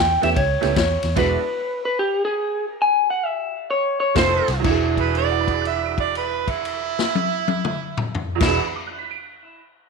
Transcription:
Already playing: fingered electric bass E2, clean electric guitar G5
0.22 fingered electric bass E2, honky-tonk piano A3 B3 C#4 E4 G4, clean electric guitar E5, snare, ride
0.36 fingered electric bass C#2, clean electric guitar C#5, kick, ride
0.61 fingered electric bass C#2, honky-tonk piano A3 B3 C#4 E4 G4, snare, ride
0.76 fingered electric bass E2, clean electric guitar C#5, kick, snare, ride
1.03 fingered electric bass E2, snare, ride
1.15 fingered electric bass E1, honky-tonk piano G#3 B3 D4 E4 F#4, clean electric guitar B4, kick, snare, crash, ride
1.85 clean electric guitar B4
1.99 clean electric guitar G4
2.25 clean electric guitar G#4
2.82 clean electric guitar G#5
3.10 clean electric guitar F#5
3.26 clean electric guitar E5
3.71 clean electric guitar C#5
4.00 clean electric guitar C#5
4.15 fingered electric bass F1, honky-tonk piano A3 C4 D#4 F4 A4, clean electric guitar C5, harmonica C5, kick, snare, ride
4.48 fingered electric bass C2, snare, ride
4.59 honky-tonk piano E2 E3
4.64 fingered electric bass E1, honky-tonk piano D4 F#4, clean electric guitar E4, kick, crash
4.71 honky-tonk piano G#4
4.97 harmonica B4, kick, crash
5.15 honky-tonk piano B4, harmonica D5, crash
5.23 honky-tonk piano D5
5.31 honky-tonk piano F#5
5.40 honky-tonk piano B5
5.48 honky-tonk piano D6, kick, crash
5.61 honky-tonk piano F#6
5.65 harmonica E5, crash
5.73 honky-tonk piano B6
5.85 honky-tonk piano D7
5.98 harmonica D5, kick, crash
6.15 harmonica B4, crash
6.48 harmonica E4, kick, crash
6.65 crash
6.99 snare
7.15 high tom
7.48 high tom
7.65 mid tom
7.97 mid tom
8.15 floor tom
8.35 honky-tonk piano E2 E3
8.41 fingered electric bass E1, honky-tonk piano D4 F#4 B4, clean electric guitar E4, harmonica E4, kick, snare, crash
8.48 honky-tonk piano G#4 D5
8.57 honky-tonk piano F#5
8.66 honky-tonk piano B5
8.76 honky-tonk piano D6
8.87 honky-tonk piano F#6
8.99 honky-tonk piano B6
9.11 honky-tonk piano D7

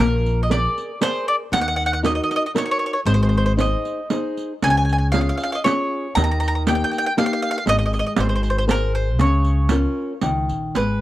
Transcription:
0.00 upright bass A#1, nylon-string guitar A#3, mandolin A#4, riq
0.26 riq
0.43 mandolin D#5
0.50 nylon-string guitar G#4 A#4 D5, mandolin D5, riq
0.78 riq
1.01 nylon-string guitar G#4 A#4 D5, mandolin C5, riq
1.28 mandolin D5
1.52 upright bass D#2, nylon-string guitar D#3, mandolin F#5, riq
1.61 mandolin F#5
1.68 mandolin F#5
1.76 mandolin F#5, riq
1.86 mandolin F#5
1.93 mandolin F#5
2.03 nylon-string guitar D#4 F#4 A#4, mandolin D#5, riq
2.15 mandolin D#5
2.24 mandolin D#5
2.31 mandolin D#5, riq
2.36 mandolin D#5
2.46 mandolin D#5
2.54 nylon-string guitar D#4 F#4 A#4, mandolin C#5, riq
2.66 mandolin C#5
2.71 mandolin C#5
2.79 mandolin C#5
2.86 mandolin C#5
2.93 mandolin C#5
3.06 upright bass G#1, nylon-string guitar G#3, mandolin C5, riq
3.14 mandolin C5
3.23 mandolin C5
3.29 mandolin C5
3.37 mandolin C5
3.46 mandolin C5
3.57 nylon-string guitar D#4 G#4 C5, mandolin D#5, riq
3.85 riq
4.10 nylon-string guitar D#4 G#4 C5, riq
4.37 riq
4.62 upright bass C#2, nylon-string guitar C#3, mandolin G#5, riq
4.70 mandolin G#5
4.77 mandolin G#5
4.85 mandolin G#5
4.89 mandolin G#5, riq
4.98 mandolin G#5
5.12 nylon-string guitar C#4 F4 G#4, mandolin F5, riq
5.21 mandolin F5
5.29 mandolin F5
5.37 mandolin F5, riq
5.43 mandolin F5
5.52 mandolin D#5 F5
5.64 nylon-string guitar C#4 F4 G#4, mandolin C#5, riq
6.15 upright bass D#2, nylon-string guitar D#3, mandolin A#5, riq
6.24 mandolin A#5
6.31 mandolin A#5
6.40 mandolin A#5, riq
6.48 mandolin A#5
6.55 mandolin A#5
6.67 nylon-string guitar A#3 D#4 G4, mandolin G5, riq
6.75 mandolin G5
6.84 mandolin G5
6.91 mandolin G5, riq
6.98 mandolin G5
7.06 mandolin G5
7.17 nylon-string guitar A#3 D#4 G4, mandolin F5, riq
7.26 mandolin F5
7.33 mandolin F5
7.42 mandolin F5
7.51 mandolin F5
7.58 mandolin F5
7.66 upright bass G#1, nylon-string guitar G#3, mandolin D#5, riq
7.79 mandolin D#5
7.86 mandolin D#5
7.93 mandolin D#5, riq
7.99 mandolin D#5
8.06 mandolin D#5
8.16 upright bass G#1, nylon-string guitar G#3, mandolin C5, riq
8.29 mandolin C5
8.35 mandolin C5
8.43 mandolin C5, riq
8.50 mandolin C5
8.58 mandolin C5
8.68 nylon-string guitar G#4 A#4 C5, mandolin A#4, riq
8.95 mandolin C5
9.18 upright bass C#2, nylon-string guitar C#3, mandolin C#5, riq
9.45 riq
9.69 nylon-string guitar C#4 F4 A#4, riq
10.21 upright bass C#2, nylon-string guitar D#3, riq
10.49 upright bass A#1, riq
10.75 upright bass G#1, nylon-string guitar G#3, mandolin B4, riq

